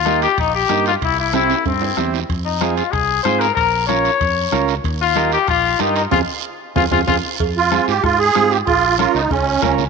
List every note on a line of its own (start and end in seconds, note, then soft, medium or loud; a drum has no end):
0.00 0.25 D#2 medium
0.00 0.20 F4 medium
0.06 0.28 A#3 medium
0.06 0.28 D#4 medium
0.06 0.28 G4 medium
0.06 bombo rim medium
0.06 high conga medium
0.06 high timbale medium
0.06 short guiro medium
0.22 0.37 G4 loud
0.22 high timbale medium
0.22 short guiro medium
0.38 0.63 A#1 medium
0.38 0.54 D#4 medium
0.38 bombo low medium
0.38 high conga soft
0.38 high timbale medium
0.38 long guiro medium
0.55 0.84 G4 medium
0.69 0.95 G2 medium
0.69 0.92 A#3 medium
0.69 0.92 D#4 medium
0.69 0.92 G4 medium
0.69 bombo rim medium
0.69 high conga medium
0.69 high timbale medium
0.69 low timbale medium
0.69 short guiro medium
0.86 0.94 F4 medium
0.86 high timbale medium
0.86 short guiro medium
1.02 1.53 C2 medium
1.02 1.18 E4 medium
1.02 bombo low medium
1.02 high conga soft
1.02 high timbale medium
1.02 long guiro medium
1.20 1.33 E4 medium
1.33 1.56 C4 medium
1.33 1.56 E4 medium
1.33 1.64 E4 loud
1.33 1.56 G4 medium
1.33 bombo rim medium
1.33 high conga medium
1.33 high timbale medium
1.33 short guiro medium
1.50 high timbale medium
1.50 short guiro medium
1.65 1.91 G2 medium
1.65 2.11 C4 medium
1.65 bombo low medium
1.65 high conga soft
1.65 high timbale medium
1.65 long guiro medium
1.81 low timbale loud
1.97 2.23 E2 medium
1.97 2.19 C4 medium
1.97 2.20 E4 medium
1.97 2.20 G4 medium
1.97 bombo rim medium
1.97 high conga medium
1.97 low timbale medium
1.97 short guiro medium
2.14 low timbale medium
2.14 short guiro medium
2.29 2.80 F2 medium
2.29 bombo low medium
2.29 high conga soft
2.29 high timbale medium
2.29 long guiro medium
2.45 2.75 D#4 medium
2.61 2.83 C4 medium
2.61 2.84 F4 medium
2.61 2.84 G#4 medium
2.61 bombo rim medium
2.61 high conga medium
2.61 high timbale medium
2.61 short guiro medium
2.76 2.93 F4 medium
2.76 high timbale medium
2.76 short guiro medium
2.92 3.19 C2 medium
2.92 3.23 G#4 loud
2.92 bombo low medium
2.92 bombo rim medium
2.92 high conga soft
2.92 high timbale medium
2.92 long guiro medium
3.23 3.50 G#2 medium
3.23 3.47 C4 medium
3.23 3.47 F4 medium
3.23 3.48 G#4 medium
3.23 3.41 C5 medium
3.23 bombo rim medium
3.23 high conga medium
3.23 high timbale medium
3.23 short guiro medium
3.40 3.54 A#4 loud
3.40 high timbale medium
3.40 short guiro medium
3.55 4.08 A#1 medium
3.55 3.85 A#4 loud
3.55 bombo low medium
3.55 high conga soft
3.55 high timbale medium
3.55 long guiro medium
3.87 4.11 C#4 medium
3.87 4.11 F4 medium
3.87 4.11 A#4 medium
3.87 4.64 C#5 medium
3.87 bombo rim medium
3.87 high conga medium
3.87 high timbale medium
3.87 short guiro medium
4.05 high timbale medium
4.05 short guiro medium
4.21 4.46 F2 medium
4.21 bombo low medium
4.21 high conga soft
4.21 high timbale medium
4.21 long guiro medium
4.52 4.78 C#2 medium
4.52 4.75 C#4 medium
4.52 4.75 F4 medium
4.52 4.75 A#4 medium
4.52 bombo rim medium
4.52 high conga medium
4.52 high timbale medium
4.52 short guiro medium
4.68 high timbale medium
4.68 short guiro medium
4.84 5.35 D#2 medium
4.84 bombo low medium
4.84 high conga soft
4.84 high timbale medium
4.84 long guiro medium
5.01 5.31 F4 loud
5.15 5.38 D#4 medium
5.15 5.39 G4 medium
5.15 5.39 A#4 medium
5.15 bombo rim medium
5.15 high conga medium
5.15 high timbale medium
5.15 short guiro medium
5.32 5.48 G4 medium
5.32 high timbale medium
5.32 short guiro medium
5.47 5.74 A#1 medium
5.47 5.82 F4 loud
5.47 bombo low medium
5.47 bombo rim medium
5.47 high conga soft
5.47 high timbale medium
5.47 long guiro medium
5.79 6.06 G2 medium
5.79 6.02 D#4 medium
5.79 5.96 D#4 medium
5.79 6.02 G4 medium
5.79 6.03 A#4 medium
5.79 bombo rim medium
5.79 high conga medium
5.79 high timbale medium
5.79 low timbale medium
5.79 short guiro medium
5.96 6.04 D#4 medium
5.96 high timbale medium
5.96 short guiro medium
6.11 6.24 F2 medium
6.11 6.22 C4 medium
6.11 6.22 F4 medium
6.11 6.20 F4 medium
6.11 6.22 G#4 medium
6.11 bombo low medium
6.11 low conga medium
6.11 high timbale medium
6.11 long guiro medium
6.76 6.88 F2 medium
6.76 6.86 C4 medium
6.76 6.86 F4 medium
6.76 6.84 F4 medium
6.76 6.86 G#4 medium
6.76 bombo low loud
6.76 low conga loud
6.76 high timbale medium
6.76 long guiro loud
6.91 7.04 F2 medium
6.91 7.02 C4 medium
6.91 7.02 F4 medium
6.91 7.00 F4 medium
6.91 7.02 G#4 medium
6.91 bombo low medium
6.91 low conga medium
6.91 high timbale medium
6.91 long guiro medium
7.07 7.20 F2 medium
7.07 7.18 C4 medium
7.07 7.18 F4 medium
7.07 7.15 F4 medium
7.07 7.18 G#4 medium
7.07 bombo low medium
7.07 low conga medium
7.07 high timbale medium
7.07 long guiro medium
7.40 7.78 F2 medium
7.40 bombo low medium
7.40 cowbell loud
7.40 high conga soft
7.40 long guiro medium
7.57 7.86 F4 medium
7.71 7.94 C4 medium
7.71 7.94 F4 medium
7.71 7.94 G#4 medium
7.71 bombo rim medium
7.71 cowbell medium
7.71 high conga medium
7.71 short guiro medium
7.88 8.00 G#2 medium
7.88 8.03 G4 medium
7.88 short guiro medium
8.03 8.29 G#2 medium
8.03 8.19 F4 loud
8.03 bombo low medium
8.03 bombo rim medium
8.03 cowbell medium
8.03 high conga soft
8.03 long guiro medium
8.19 8.52 G#4 loud
8.35 8.61 G#2 medium
8.35 8.57 C4 medium
8.35 8.58 F4 medium
8.35 8.58 G4 medium
8.35 bombo rim medium
8.35 cowbell medium
8.35 high conga medium
8.35 short guiro medium
8.51 8.58 G4 medium
8.51 short guiro medium
8.67 9.05 A#1 medium
8.67 8.96 F4 loud
8.67 bombo low medium
8.67 cowbell loud
8.67 high conga soft
8.67 long guiro medium
8.98 9.21 C#4 medium
8.98 9.15 F4 medium
8.98 9.21 F4 medium
8.98 9.21 A#4 medium
8.98 bombo rim medium
8.98 cowbell medium
8.98 high conga medium
8.98 short guiro medium
9.14 9.27 C#2 medium
9.14 9.31 D#4 medium
9.14 short guiro medium
9.30 9.56 C#2 medium
9.30 9.75 C#4 medium
9.30 bombo low medium
9.30 cowbell medium
9.30 high conga soft
9.30 long guiro medium
9.61 9.88 C#2 medium
9.61 9.84 C#4 medium
9.61 9.84 F4 medium
9.61 9.85 A#4 medium
9.61 bombo low medium
9.61 bombo rim medium
9.61 cowbell medium
9.61 high conga medium
9.61 low conga medium
9.61 short guiro medium
9.78 low conga medium
9.78 short guiro medium